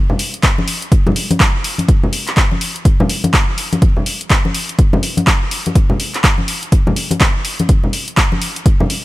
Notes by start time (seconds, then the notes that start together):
0.10 low conga
0.19 open hi-hat
0.34 closed hi-hat
0.43 kick, clap, closed hi-hat
0.58 high conga
0.68 open hi-hat
0.82 closed hi-hat
0.92 kick, closed hi-hat
1.07 high conga, low conga
1.16 open hi-hat
1.31 closed hi-hat, high conga
1.40 kick, clap, closed hi-hat
1.64 open hi-hat
1.78 closed hi-hat, high conga
1.88 kick, closed hi-hat
2.03 low conga
2.13 open hi-hat
2.28 clap, closed hi-hat
2.37 kick, clap, closed hi-hat
2.51 high conga
2.61 open hi-hat
2.76 closed hi-hat
2.85 kick, closed hi-hat
3.00 high conga, low conga
3.10 open hi-hat
3.24 closed hi-hat, high conga
3.34 kick, clap, closed hi-hat
3.58 open hi-hat
3.73 closed hi-hat, high conga
3.82 kick, closed hi-hat
3.97 low conga
4.06 open hi-hat
4.21 closed hi-hat
4.30 kick, clap, closed hi-hat
4.45 high conga
4.55 open hi-hat
4.69 closed hi-hat
4.79 kick, closed hi-hat
4.93 high conga, low conga
5.03 open hi-hat
5.17 closed hi-hat, high conga
5.27 kick, clap, closed hi-hat
5.51 open hi-hat
5.66 closed hi-hat, high conga
5.75 kick, closed hi-hat
5.90 low conga
6.00 open hi-hat
6.14 clap, closed hi-hat
6.24 kick, clap, closed hi-hat
6.38 high conga
6.48 open hi-hat
6.63 closed hi-hat
6.72 kick, closed hi-hat
6.87 high conga, low conga
6.96 open hi-hat
7.11 closed hi-hat, high conga
7.21 kick, clap, closed hi-hat
7.45 open hi-hat
7.59 closed hi-hat, high conga
7.69 kick, closed hi-hat
7.84 low conga
7.93 open hi-hat
8.08 closed hi-hat
8.17 kick, clap, closed hi-hat
8.32 high conga
8.42 open hi-hat
8.56 closed hi-hat
8.66 kick, closed hi-hat
8.80 high conga, low conga
8.90 open hi-hat